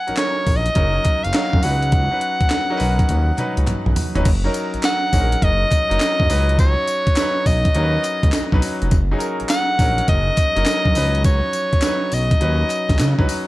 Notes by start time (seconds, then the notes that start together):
Already playing: F#5
0.07 A#1 F#3 C#4 D#4 A#4, closed hi-hat
0.17 C#5, snare, clap, closed hi-hat
0.47 A#1, kick, open hi-hat
0.56 D#5
0.66 closed hi-hat
0.75 F#1 F#3 C#4 D#4 A#4, kick, closed hi-hat
1.05 kick, clap, closed hi-hat
1.24 F#1 F5, closed hi-hat
1.33 F#3 C#4 D#4 F#4, snare, clap, closed hi-hat
1.53 F#2, kick
1.63 C#2 F#3 C#4 D#4 B4 F#5, open hi-hat
1.82 closed hi-hat
1.92 kick, closed hi-hat
2.11 F#3 C#4 D#4 B4
2.21 closed hi-hat
2.41 B1, kick, closed hi-hat
2.50 snare, clap, closed hi-hat
2.70 F#3 C#4 D#4 A#4
2.77 B1 B4, open hi-hat
2.99 kick, closed hi-hat
3.09 D#2, closed hi-hat, high tom
3.38 F#3 C#4 D#4 B4, clap, closed hi-hat, mid tom
3.57 C#2, closed hi-hat
3.67 B1, clap, closed hi-hat, mid tom
3.86 B1, mid tom
3.96 floor tom, open hi-hat
4.15 F1 F#3 C#4 D#4 B4, closed hi-hat, floor tom
4.25 F#1, kick, closed hi-hat, crash, tambourine
4.44 F#3 C#4 D#4 A#4
4.54 closed hi-hat, tambourine
4.74 A#1, closed hi-hat
4.83 F#5, snare, clap, closed hi-hat, tambourine
5.12 A#1 F#3 C#4 D#4 G#4, kick, open hi-hat, tambourine
5.20 A#4
5.32 closed hi-hat
5.42 F#1 D#5, kick, closed hi-hat
5.71 kick, clap, closed hi-hat, tambourine
5.89 F#1 F#3 C#4 D#4 A#4, closed hi-hat
6.00 snare, clap, closed hi-hat, tambourine
6.20 F#2, kick
6.30 C#2 F#3 C#4 D#4 B4, open hi-hat, tambourine
6.49 closed hi-hat
6.59 C#5, kick, closed hi-hat, tambourine
6.88 closed hi-hat, tambourine
7.07 B1, kick, closed hi-hat
7.16 F#3 C#4 D#4 B4, snare, clap, closed hi-hat, tambourine
7.46 B1 D#5, kick, open hi-hat, tambourine
7.65 kick, closed hi-hat
7.75 D#2 F#3 C#4 D#4 A#4, closed hi-hat
7.82 B4
8.04 clap, closed hi-hat, tambourine
8.23 C#2, kick, closed hi-hat
8.32 B1, snare, clap, closed hi-hat, tambourine
8.52 B1 F#3 C#4 D#4 B4, kick
8.62 open hi-hat, tambourine
8.82 F1, closed hi-hat
8.91 F#1, kick, closed hi-hat, tambourine
9.11 F#3 C#4 D#4 G#4
9.19 A#4, closed hi-hat, tambourine
9.40 A#1, closed hi-hat
9.49 F#5, snare, clap, closed hi-hat, tambourine
9.79 A#1 F#3 C#4 D#4 A#4, kick, open hi-hat, tambourine
9.98 closed hi-hat
10.08 F#1 D#5, kick, closed hi-hat
10.37 kick, clap, closed hi-hat, tambourine
10.56 F#1 F#3 C#4 D#4 A#4, closed hi-hat
10.66 snare, clap, closed hi-hat, tambourine
10.85 F#2, kick
10.95 C#2 F3 C#4 D#4 B4, open hi-hat, tambourine
11.02 F#3
11.15 closed hi-hat
11.24 C#5, kick, closed hi-hat, tambourine
11.53 closed hi-hat, tambourine
11.73 B1, kick, closed hi-hat
11.82 F#3 C#4 D#4 B4, snare, clap, closed hi-hat, tambourine
12.12 B1 D#5, open hi-hat, tambourine
12.31 kick, closed hi-hat
12.40 D#2 F#3 C#4 D#4 B4, closed hi-hat
12.70 clap, closed hi-hat, tambourine
12.89 C#2, kick, snare, closed hi-hat
12.99 C#3, snare, clap, closed hi-hat, tambourine
13.18 C#2 F#3 C#4 D#4 B4, kick
13.29 open hi-hat, tambourine